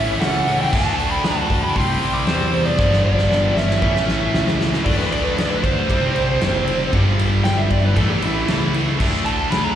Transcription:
Already playing: A1 A2 E3 A3 C#4 E4 B4 E5
0.20 C#2 C#4 F#5, snare, open hi-hat
0.47 open hi-hat
0.61 E4 G5
0.71 D2 D3 A3 D4 F#4 A4 E5 A5, kick, crash
0.99 open hi-hat
1.11 G4 B5
1.23 D2 F#4 A5, snare, open hi-hat
1.50 D2, kick, open hi-hat
1.63 G4 B5
1.74 C2 C3 G3 C4 G4 D5 C6, kick, open hi-hat
2.01 C2, open hi-hat
2.14 B4 D6
2.27 E2 G3 C5, snare, open hi-hat
2.53 open hi-hat
2.65 B3 D5
2.78 G1 G2 D3 G3 D4 A4, kick, snare
2.93 snare
3.04 B3 D5
3.18 snare
3.31 G1, snare
3.57 G1 C#4 E5, snare
3.70 snare
3.81 A1 A2 E3 A3 E4 B4, kick
3.96 snare
4.08 A1, snare
4.34 C#2, snare
4.47 snare
4.61 snare
4.74 snare
4.84 D2 D3 A3 D4 A4 D5 E5, kick, crash
4.98 B4
5.11 D5, ride
5.24 B4
5.37 D2 D5, snare, ride
5.51 B4
5.63 D2 C5, kick, ride
5.88 C2 C3 G3 C4 G4 D5, kick, ride
6.15 C2, ride
6.41 F#1, snare, ride
6.67 ride
6.91 G1 G2 D3 G3 D4 A4, kick, ride
7.19 ride
7.44 G1 G5, snare, ride
7.57 E5
7.70 G1 D5, kick, ride
7.85 B4
7.94 A1 A2 E3 A3 E4 A4 B4, kick, ride
8.10 G4
8.22 A1 E4, ride
8.46 C#2 E4, snare, ride
8.74 ride
8.98 D2 D3 A3 D4 A4 E5, kick, crash
9.26 A5, ride
9.52 D2 B5, snare, ride
9.64 A#5

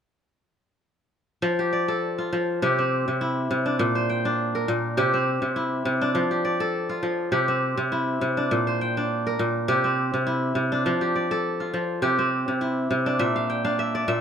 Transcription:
1.42 F3
1.59 G4
1.73 D5
1.88 A4
2.18 F4
2.33 F3
2.62 C3 G4
2.79 C4
3.08 C3
3.21 E4
3.51 C3
3.66 D4
3.79 A#2
3.95 C5
4.09 G5
4.25 D4
4.55 A#4
4.68 A#2
4.97 C3 G4
5.14 C4
5.42 C3
5.56 E4
5.85 C3
6.01 D4
6.15 F3
6.31 G4
6.45 D5
6.60 A4
6.89 F4
7.03 F3
7.32 C3 G4
7.48 C4
7.77 C3
7.92 E4
8.21 C3
8.37 D4
8.51 A#2
8.67 C5
8.81 G5
8.97 D4
9.27 A#4
9.39 A#2
9.68 C3 G4
9.84 C4
10.14 C3
10.27 E4
10.55 C3
10.72 D4
10.86 F3
11.01 G4
11.16 D5
11.31 A4
11.60 F4
11.74 F3
12.02 C3 G4
12.19 C4
12.48 C3
12.61 E4
12.91 C3
13.06 D4
13.19 A#2 E5
13.36 F5
13.50 G5
13.65 D4 F5
13.79 E5
13.95 D5
14.08 A#2 E5

